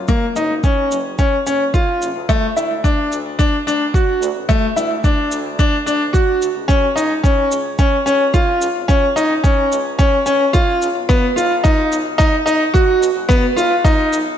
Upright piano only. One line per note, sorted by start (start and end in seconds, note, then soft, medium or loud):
0.08 0.24 A#3 medium
0.36 0.52 D#4 medium
0.64 0.94 C#4 medium
1.19 1.34 C#4 medium
1.46 1.62 C#4 medium
1.74 2.04 F4 medium
2.29 2.44 A3 medium
2.57 2.72 E4 medium
2.84 3.15 D4 medium
3.39 3.54 D4 medium
3.67 3.82 D4 medium
3.94 4.25 F#4 medium
4.49 4.64 A3 medium
4.76 4.92 E4 medium
5.04 5.35 D4 medium
5.59 5.74 D4 medium
5.86 6.02 D4 medium
6.13 6.44 F#4 medium
6.68 6.84 C#4 medium
6.96 7.11 D#4 medium
7.23 7.54 C#4 medium
7.79 7.94 C#4 medium
8.06 8.21 C#4 medium
8.34 8.65 F4 medium
8.88 9.04 C#4 medium
9.16 9.32 D#4 medium
9.44 9.74 C#4 medium
9.99 10.14 C#4 medium
10.26 10.42 C#4 medium
10.53 10.84 F4 medium
11.09 11.24 B3 medium
11.36 11.52 F4 medium
11.64 11.95 D#4 medium
12.18 12.34 D#4 loud
12.46 12.61 D#4 medium
12.74 13.05 F#4 medium
13.29 13.44 B3 loud
13.56 13.72 F4 medium
13.85 14.15 D#4 medium